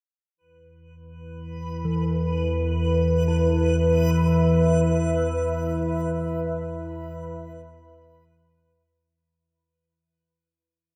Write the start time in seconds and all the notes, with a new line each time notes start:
0.36 E3 E4 B4
0.40 E2
0.86 B4
1.85 E3
3.03 E5
3.28 E4